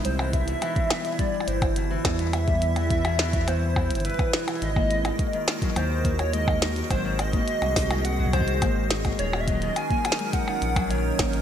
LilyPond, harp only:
\new Staff \with { instrumentName = "Harp" } { \clef bass \time 4/4 \key gis \minor \tempo 4 = 105 r16 e16 r16 b,16 e16 r16 b16 r16 g16 r16 e16 r16 b,16 e16 r16 b16 | r16 g16 r16 e16 r16 b,16 e16 r16 b16 r16 e16 r16 e'16 r16 e16 e16 | r16 ais16 r16 gis16 r16 dis16 r16 fis16 dis16 r16 ais16 r16 gis16 r16 dis16 r16 | fis16 dis16 r16 ais16 r16 gis16 r16 dis16 r16 fis16 dis16 r16 ais16 r16 gis16 r16 |
dis16 r16 fis16 dis16 r16 ais16 r16 gis16 r16 dis16 r16 fis16 dis16 r16 ais16 r16 | }